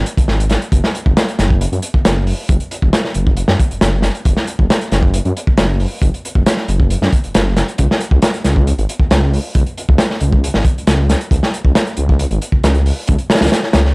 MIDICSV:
0, 0, Header, 1, 3, 480
1, 0, Start_track
1, 0, Tempo, 441176
1, 791, Time_signature, 4, 2, 24, 8
1, 15173, End_track
2, 0, Start_track
2, 0, Title_t, "Detuned saw bass"
2, 0, Program_c, 0, 39
2, 190, Note_on_c, 0, 32, 43
2, 285, Note_off_c, 0, 32, 0
2, 307, Note_on_c, 0, 32, 89
2, 612, Note_off_c, 0, 32, 0
2, 784, Note_on_c, 0, 30, 98
2, 873, Note_off_c, 0, 30, 0
2, 1152, Note_on_c, 0, 30, 90
2, 1235, Note_off_c, 0, 30, 0
2, 1511, Note_on_c, 0, 30, 98
2, 1814, Note_off_c, 0, 30, 0
2, 1871, Note_on_c, 0, 42, 94
2, 1954, Note_off_c, 0, 42, 0
2, 2111, Note_on_c, 0, 30, 42
2, 2206, Note_off_c, 0, 30, 0
2, 2229, Note_on_c, 0, 30, 88
2, 2533, Note_off_c, 0, 30, 0
2, 2710, Note_on_c, 0, 30, 103
2, 2796, Note_off_c, 0, 30, 0
2, 3071, Note_on_c, 0, 30, 89
2, 3154, Note_off_c, 0, 30, 0
2, 3430, Note_on_c, 0, 30, 100
2, 3733, Note_off_c, 0, 30, 0
2, 3792, Note_on_c, 0, 42, 97
2, 3875, Note_off_c, 0, 42, 0
2, 4032, Note_on_c, 0, 30, 44
2, 4127, Note_off_c, 0, 30, 0
2, 4150, Note_on_c, 0, 30, 87
2, 4454, Note_off_c, 0, 30, 0
2, 4629, Note_on_c, 0, 30, 102
2, 4715, Note_off_c, 0, 30, 0
2, 4994, Note_on_c, 0, 30, 85
2, 5076, Note_off_c, 0, 30, 0
2, 5350, Note_on_c, 0, 30, 103
2, 5654, Note_off_c, 0, 30, 0
2, 5714, Note_on_c, 0, 42, 96
2, 5796, Note_off_c, 0, 42, 0
2, 5954, Note_on_c, 0, 30, 43
2, 6048, Note_off_c, 0, 30, 0
2, 6074, Note_on_c, 0, 30, 90
2, 6375, Note_off_c, 0, 30, 0
2, 6546, Note_on_c, 0, 30, 101
2, 6634, Note_off_c, 0, 30, 0
2, 6912, Note_on_c, 0, 30, 88
2, 6995, Note_off_c, 0, 30, 0
2, 7271, Note_on_c, 0, 30, 100
2, 7574, Note_off_c, 0, 30, 0
2, 7634, Note_on_c, 0, 42, 99
2, 7716, Note_off_c, 0, 42, 0
2, 7875, Note_on_c, 0, 30, 43
2, 7968, Note_off_c, 0, 30, 0
2, 7994, Note_on_c, 0, 30, 89
2, 8296, Note_off_c, 0, 30, 0
2, 8475, Note_on_c, 0, 37, 98
2, 8558, Note_off_c, 0, 37, 0
2, 8826, Note_on_c, 0, 37, 90
2, 8911, Note_off_c, 0, 37, 0
2, 9191, Note_on_c, 0, 37, 100
2, 9494, Note_off_c, 0, 37, 0
2, 9553, Note_on_c, 0, 32, 98
2, 9635, Note_off_c, 0, 32, 0
2, 9786, Note_on_c, 0, 37, 44
2, 9884, Note_off_c, 0, 37, 0
2, 9912, Note_on_c, 0, 37, 86
2, 10215, Note_off_c, 0, 37, 0
2, 10392, Note_on_c, 0, 37, 98
2, 10477, Note_off_c, 0, 37, 0
2, 10757, Note_on_c, 0, 37, 92
2, 10837, Note_off_c, 0, 37, 0
2, 11110, Note_on_c, 0, 37, 99
2, 11414, Note_off_c, 0, 37, 0
2, 11473, Note_on_c, 0, 32, 96
2, 11555, Note_off_c, 0, 32, 0
2, 11712, Note_on_c, 0, 37, 43
2, 11807, Note_off_c, 0, 37, 0
2, 11830, Note_on_c, 0, 37, 87
2, 12134, Note_off_c, 0, 37, 0
2, 12306, Note_on_c, 0, 37, 102
2, 12394, Note_off_c, 0, 37, 0
2, 12671, Note_on_c, 0, 37, 90
2, 12754, Note_off_c, 0, 37, 0
2, 13029, Note_on_c, 0, 37, 99
2, 13333, Note_off_c, 0, 37, 0
2, 13391, Note_on_c, 0, 32, 94
2, 13474, Note_off_c, 0, 32, 0
2, 13626, Note_on_c, 0, 37, 44
2, 13723, Note_off_c, 0, 37, 0
2, 13748, Note_on_c, 0, 37, 88
2, 14053, Note_off_c, 0, 37, 0
2, 14240, Note_on_c, 0, 37, 100
2, 14320, Note_off_c, 0, 37, 0
2, 14592, Note_on_c, 0, 37, 90
2, 14675, Note_off_c, 0, 37, 0
2, 14950, Note_on_c, 0, 37, 99
2, 15173, Note_off_c, 0, 37, 0
2, 15173, End_track
3, 0, Start_track
3, 0, Title_t, "Drums"
3, 65, Note_on_c, 9, 42, 61
3, 174, Note_off_c, 9, 42, 0
3, 190, Note_on_c, 9, 36, 109
3, 195, Note_on_c, 9, 42, 81
3, 299, Note_off_c, 9, 36, 0
3, 303, Note_off_c, 9, 42, 0
3, 305, Note_on_c, 9, 38, 48
3, 414, Note_off_c, 9, 38, 0
3, 436, Note_on_c, 9, 42, 61
3, 539, Note_off_c, 9, 42, 0
3, 539, Note_on_c, 9, 42, 72
3, 552, Note_on_c, 9, 38, 50
3, 648, Note_off_c, 9, 42, 0
3, 661, Note_off_c, 9, 38, 0
3, 672, Note_on_c, 9, 42, 44
3, 781, Note_off_c, 9, 42, 0
3, 783, Note_on_c, 9, 36, 109
3, 787, Note_on_c, 9, 42, 84
3, 892, Note_off_c, 9, 36, 0
3, 895, Note_off_c, 9, 42, 0
3, 912, Note_on_c, 9, 38, 53
3, 1021, Note_off_c, 9, 38, 0
3, 1031, Note_on_c, 9, 42, 71
3, 1140, Note_off_c, 9, 42, 0
3, 1153, Note_on_c, 9, 36, 110
3, 1262, Note_off_c, 9, 36, 0
3, 1272, Note_on_c, 9, 38, 119
3, 1274, Note_on_c, 9, 42, 89
3, 1381, Note_off_c, 9, 38, 0
3, 1382, Note_off_c, 9, 42, 0
3, 1396, Note_on_c, 9, 42, 46
3, 1505, Note_off_c, 9, 42, 0
3, 1509, Note_on_c, 9, 38, 56
3, 1510, Note_on_c, 9, 42, 63
3, 1618, Note_off_c, 9, 38, 0
3, 1619, Note_off_c, 9, 42, 0
3, 1636, Note_on_c, 9, 36, 90
3, 1745, Note_off_c, 9, 36, 0
3, 1752, Note_on_c, 9, 42, 93
3, 1861, Note_off_c, 9, 42, 0
3, 1877, Note_on_c, 9, 42, 46
3, 1984, Note_off_c, 9, 42, 0
3, 1984, Note_on_c, 9, 42, 64
3, 2093, Note_off_c, 9, 42, 0
3, 2111, Note_on_c, 9, 36, 96
3, 2220, Note_off_c, 9, 36, 0
3, 2229, Note_on_c, 9, 42, 96
3, 2231, Note_on_c, 9, 38, 120
3, 2338, Note_off_c, 9, 42, 0
3, 2340, Note_off_c, 9, 38, 0
3, 2468, Note_on_c, 9, 46, 77
3, 2576, Note_off_c, 9, 46, 0
3, 2707, Note_on_c, 9, 42, 83
3, 2710, Note_on_c, 9, 36, 115
3, 2816, Note_off_c, 9, 42, 0
3, 2819, Note_off_c, 9, 36, 0
3, 2829, Note_on_c, 9, 42, 44
3, 2938, Note_off_c, 9, 42, 0
3, 2951, Note_on_c, 9, 42, 74
3, 3059, Note_off_c, 9, 42, 0
3, 3072, Note_on_c, 9, 36, 98
3, 3181, Note_off_c, 9, 36, 0
3, 3188, Note_on_c, 9, 38, 122
3, 3194, Note_on_c, 9, 42, 87
3, 3297, Note_off_c, 9, 38, 0
3, 3303, Note_off_c, 9, 42, 0
3, 3314, Note_on_c, 9, 38, 37
3, 3420, Note_on_c, 9, 42, 66
3, 3423, Note_off_c, 9, 38, 0
3, 3529, Note_off_c, 9, 42, 0
3, 3554, Note_on_c, 9, 36, 99
3, 3663, Note_off_c, 9, 36, 0
3, 3663, Note_on_c, 9, 42, 92
3, 3771, Note_off_c, 9, 42, 0
3, 3784, Note_on_c, 9, 38, 61
3, 3893, Note_off_c, 9, 38, 0
3, 3912, Note_on_c, 9, 36, 102
3, 3915, Note_on_c, 9, 42, 66
3, 4020, Note_off_c, 9, 36, 0
3, 4024, Note_off_c, 9, 42, 0
3, 4036, Note_on_c, 9, 42, 45
3, 4145, Note_off_c, 9, 42, 0
3, 4147, Note_on_c, 9, 38, 121
3, 4152, Note_on_c, 9, 42, 92
3, 4256, Note_off_c, 9, 38, 0
3, 4261, Note_off_c, 9, 42, 0
3, 4376, Note_on_c, 9, 38, 52
3, 4387, Note_on_c, 9, 42, 65
3, 4485, Note_off_c, 9, 38, 0
3, 4496, Note_off_c, 9, 42, 0
3, 4511, Note_on_c, 9, 42, 42
3, 4620, Note_off_c, 9, 42, 0
3, 4627, Note_on_c, 9, 42, 82
3, 4629, Note_on_c, 9, 36, 113
3, 4735, Note_off_c, 9, 42, 0
3, 4738, Note_off_c, 9, 36, 0
3, 4750, Note_on_c, 9, 38, 48
3, 4859, Note_off_c, 9, 38, 0
3, 4867, Note_on_c, 9, 42, 69
3, 4976, Note_off_c, 9, 42, 0
3, 4993, Note_on_c, 9, 36, 95
3, 5102, Note_off_c, 9, 36, 0
3, 5116, Note_on_c, 9, 38, 124
3, 5117, Note_on_c, 9, 42, 87
3, 5225, Note_off_c, 9, 38, 0
3, 5225, Note_off_c, 9, 42, 0
3, 5234, Note_on_c, 9, 42, 46
3, 5343, Note_off_c, 9, 42, 0
3, 5348, Note_on_c, 9, 42, 70
3, 5355, Note_on_c, 9, 38, 53
3, 5457, Note_off_c, 9, 42, 0
3, 5464, Note_off_c, 9, 38, 0
3, 5468, Note_on_c, 9, 36, 105
3, 5577, Note_off_c, 9, 36, 0
3, 5589, Note_on_c, 9, 42, 99
3, 5697, Note_off_c, 9, 42, 0
3, 5714, Note_on_c, 9, 42, 43
3, 5823, Note_off_c, 9, 42, 0
3, 5838, Note_on_c, 9, 42, 71
3, 5947, Note_off_c, 9, 42, 0
3, 5954, Note_on_c, 9, 36, 98
3, 6063, Note_off_c, 9, 36, 0
3, 6064, Note_on_c, 9, 42, 97
3, 6067, Note_on_c, 9, 38, 127
3, 6173, Note_off_c, 9, 42, 0
3, 6176, Note_off_c, 9, 38, 0
3, 6308, Note_on_c, 9, 46, 73
3, 6417, Note_off_c, 9, 46, 0
3, 6546, Note_on_c, 9, 36, 107
3, 6554, Note_on_c, 9, 42, 93
3, 6655, Note_off_c, 9, 36, 0
3, 6663, Note_off_c, 9, 42, 0
3, 6681, Note_on_c, 9, 42, 45
3, 6790, Note_off_c, 9, 42, 0
3, 6800, Note_on_c, 9, 42, 63
3, 6908, Note_off_c, 9, 42, 0
3, 6913, Note_on_c, 9, 36, 91
3, 7021, Note_off_c, 9, 36, 0
3, 7031, Note_on_c, 9, 42, 95
3, 7034, Note_on_c, 9, 38, 118
3, 7140, Note_off_c, 9, 42, 0
3, 7143, Note_off_c, 9, 38, 0
3, 7148, Note_on_c, 9, 38, 39
3, 7257, Note_off_c, 9, 38, 0
3, 7272, Note_on_c, 9, 42, 73
3, 7380, Note_off_c, 9, 42, 0
3, 7395, Note_on_c, 9, 36, 102
3, 7504, Note_off_c, 9, 36, 0
3, 7511, Note_on_c, 9, 42, 93
3, 7619, Note_off_c, 9, 42, 0
3, 7639, Note_on_c, 9, 38, 52
3, 7748, Note_off_c, 9, 38, 0
3, 7751, Note_on_c, 9, 42, 72
3, 7753, Note_on_c, 9, 36, 97
3, 7860, Note_off_c, 9, 42, 0
3, 7862, Note_off_c, 9, 36, 0
3, 7873, Note_on_c, 9, 42, 44
3, 7982, Note_off_c, 9, 42, 0
3, 7991, Note_on_c, 9, 42, 93
3, 7996, Note_on_c, 9, 38, 123
3, 8100, Note_off_c, 9, 42, 0
3, 8105, Note_off_c, 9, 38, 0
3, 8230, Note_on_c, 9, 42, 72
3, 8232, Note_on_c, 9, 38, 57
3, 8339, Note_off_c, 9, 42, 0
3, 8341, Note_off_c, 9, 38, 0
3, 8360, Note_on_c, 9, 42, 42
3, 8466, Note_off_c, 9, 42, 0
3, 8466, Note_on_c, 9, 42, 95
3, 8476, Note_on_c, 9, 36, 97
3, 8575, Note_off_c, 9, 42, 0
3, 8585, Note_off_c, 9, 36, 0
3, 8607, Note_on_c, 9, 38, 56
3, 8710, Note_on_c, 9, 42, 68
3, 8716, Note_off_c, 9, 38, 0
3, 8819, Note_off_c, 9, 42, 0
3, 8826, Note_on_c, 9, 36, 103
3, 8934, Note_off_c, 9, 36, 0
3, 8943, Note_on_c, 9, 42, 96
3, 8949, Note_on_c, 9, 38, 121
3, 9052, Note_off_c, 9, 42, 0
3, 9058, Note_off_c, 9, 38, 0
3, 9071, Note_on_c, 9, 42, 44
3, 9180, Note_off_c, 9, 42, 0
3, 9188, Note_on_c, 9, 38, 49
3, 9188, Note_on_c, 9, 42, 64
3, 9297, Note_off_c, 9, 38, 0
3, 9297, Note_off_c, 9, 42, 0
3, 9315, Note_on_c, 9, 36, 99
3, 9424, Note_off_c, 9, 36, 0
3, 9434, Note_on_c, 9, 42, 85
3, 9543, Note_off_c, 9, 42, 0
3, 9557, Note_on_c, 9, 42, 46
3, 9666, Note_off_c, 9, 42, 0
3, 9674, Note_on_c, 9, 42, 67
3, 9782, Note_off_c, 9, 42, 0
3, 9787, Note_on_c, 9, 36, 89
3, 9895, Note_off_c, 9, 36, 0
3, 9907, Note_on_c, 9, 42, 80
3, 9912, Note_on_c, 9, 38, 113
3, 10016, Note_off_c, 9, 42, 0
3, 10020, Note_off_c, 9, 38, 0
3, 10156, Note_on_c, 9, 46, 76
3, 10265, Note_off_c, 9, 46, 0
3, 10389, Note_on_c, 9, 42, 95
3, 10392, Note_on_c, 9, 36, 113
3, 10498, Note_off_c, 9, 42, 0
3, 10501, Note_off_c, 9, 36, 0
3, 10514, Note_on_c, 9, 42, 42
3, 10623, Note_off_c, 9, 42, 0
3, 10635, Note_on_c, 9, 42, 72
3, 10744, Note_off_c, 9, 42, 0
3, 10758, Note_on_c, 9, 36, 106
3, 10861, Note_on_c, 9, 38, 115
3, 10865, Note_on_c, 9, 42, 85
3, 10867, Note_off_c, 9, 36, 0
3, 10970, Note_off_c, 9, 38, 0
3, 10974, Note_off_c, 9, 42, 0
3, 10995, Note_on_c, 9, 38, 40
3, 11103, Note_on_c, 9, 42, 67
3, 11104, Note_off_c, 9, 38, 0
3, 11212, Note_off_c, 9, 42, 0
3, 11234, Note_on_c, 9, 36, 101
3, 11343, Note_off_c, 9, 36, 0
3, 11358, Note_on_c, 9, 42, 91
3, 11466, Note_off_c, 9, 42, 0
3, 11469, Note_on_c, 9, 38, 54
3, 11577, Note_off_c, 9, 38, 0
3, 11583, Note_on_c, 9, 42, 75
3, 11584, Note_on_c, 9, 36, 104
3, 11692, Note_off_c, 9, 42, 0
3, 11693, Note_off_c, 9, 36, 0
3, 11729, Note_on_c, 9, 42, 41
3, 11829, Note_off_c, 9, 42, 0
3, 11829, Note_on_c, 9, 42, 98
3, 11832, Note_on_c, 9, 38, 118
3, 11937, Note_off_c, 9, 42, 0
3, 11941, Note_off_c, 9, 38, 0
3, 12072, Note_on_c, 9, 42, 66
3, 12074, Note_on_c, 9, 38, 51
3, 12181, Note_off_c, 9, 42, 0
3, 12183, Note_off_c, 9, 38, 0
3, 12193, Note_on_c, 9, 42, 45
3, 12302, Note_off_c, 9, 42, 0
3, 12306, Note_on_c, 9, 36, 106
3, 12310, Note_on_c, 9, 42, 88
3, 12414, Note_off_c, 9, 36, 0
3, 12419, Note_off_c, 9, 42, 0
3, 12436, Note_on_c, 9, 38, 55
3, 12544, Note_off_c, 9, 38, 0
3, 12554, Note_on_c, 9, 42, 67
3, 12663, Note_off_c, 9, 42, 0
3, 12671, Note_on_c, 9, 36, 91
3, 12780, Note_off_c, 9, 36, 0
3, 12787, Note_on_c, 9, 38, 125
3, 12788, Note_on_c, 9, 42, 94
3, 12896, Note_off_c, 9, 38, 0
3, 12897, Note_off_c, 9, 42, 0
3, 12911, Note_on_c, 9, 42, 43
3, 13020, Note_off_c, 9, 42, 0
3, 13020, Note_on_c, 9, 42, 63
3, 13129, Note_off_c, 9, 42, 0
3, 13155, Note_on_c, 9, 36, 104
3, 13264, Note_off_c, 9, 36, 0
3, 13266, Note_on_c, 9, 42, 95
3, 13375, Note_off_c, 9, 42, 0
3, 13390, Note_on_c, 9, 42, 44
3, 13499, Note_off_c, 9, 42, 0
3, 13509, Note_on_c, 9, 42, 65
3, 13617, Note_off_c, 9, 42, 0
3, 13625, Note_on_c, 9, 36, 81
3, 13734, Note_off_c, 9, 36, 0
3, 13748, Note_on_c, 9, 42, 83
3, 13753, Note_on_c, 9, 38, 104
3, 13857, Note_off_c, 9, 42, 0
3, 13862, Note_off_c, 9, 38, 0
3, 13868, Note_on_c, 9, 42, 38
3, 13977, Note_off_c, 9, 42, 0
3, 13990, Note_on_c, 9, 46, 77
3, 14099, Note_off_c, 9, 46, 0
3, 14226, Note_on_c, 9, 42, 90
3, 14240, Note_on_c, 9, 36, 117
3, 14334, Note_off_c, 9, 42, 0
3, 14344, Note_on_c, 9, 42, 43
3, 14349, Note_off_c, 9, 36, 0
3, 14453, Note_off_c, 9, 42, 0
3, 14468, Note_on_c, 9, 38, 97
3, 14472, Note_on_c, 9, 42, 63
3, 14522, Note_off_c, 9, 38, 0
3, 14522, Note_on_c, 9, 38, 91
3, 14534, Note_off_c, 9, 42, 0
3, 14534, Note_on_c, 9, 42, 65
3, 14588, Note_off_c, 9, 38, 0
3, 14588, Note_on_c, 9, 38, 93
3, 14600, Note_off_c, 9, 42, 0
3, 14600, Note_on_c, 9, 42, 74
3, 14643, Note_off_c, 9, 42, 0
3, 14643, Note_on_c, 9, 42, 71
3, 14644, Note_off_c, 9, 38, 0
3, 14644, Note_on_c, 9, 38, 90
3, 14709, Note_off_c, 9, 38, 0
3, 14709, Note_on_c, 9, 38, 110
3, 14717, Note_off_c, 9, 42, 0
3, 14717, Note_on_c, 9, 42, 89
3, 14818, Note_off_c, 9, 38, 0
3, 14825, Note_off_c, 9, 42, 0
3, 14831, Note_on_c, 9, 38, 35
3, 14940, Note_off_c, 9, 38, 0
3, 14942, Note_on_c, 9, 38, 112
3, 14942, Note_on_c, 9, 42, 78
3, 15050, Note_off_c, 9, 38, 0
3, 15050, Note_off_c, 9, 42, 0
3, 15076, Note_on_c, 9, 38, 32
3, 15173, Note_off_c, 9, 38, 0
3, 15173, End_track
0, 0, End_of_file